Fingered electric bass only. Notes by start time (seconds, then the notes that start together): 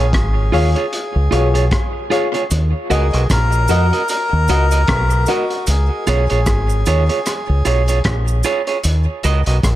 Already playing: A#1
0.13 G#1
0.53 D#2
1.16 C#2
1.32 B1
2.51 D#2
2.91 C#2
3.14 B1
3.30 A#1
3.69 F2
4.33 D#2
4.49 C#2
4.89 B1
5.68 C#2
6.08 B1
6.31 A#1
6.46 G#1
6.87 D#2
7.49 C#2
7.66 B1
8.05 A#1
8.85 D#2
9.24 C#2
9.47 B1
9.64 A#1